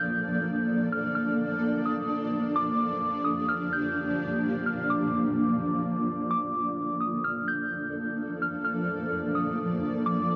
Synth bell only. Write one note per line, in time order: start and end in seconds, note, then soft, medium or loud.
0.00 0.64 G6 medium
0.92 1.14 F6 medium
1.15 1.81 F6 medium
1.85 2.08 D#6 medium
2.56 3.22 D6 loud
3.25 3.48 D#6 medium
3.49 3.71 F6 medium
3.73 4.39 G6 medium
4.66 4.89 F6 medium
4.90 6.27 D6 medium
6.31 6.97 D6 loud
7.01 7.23 D#6 medium
7.24 7.47 F6 medium
7.48 8.14 G6 medium
8.42 8.63 F6 medium
8.65 9.31 F6 medium
9.35 9.57 D#6 medium
10.06 10.36 D6 loud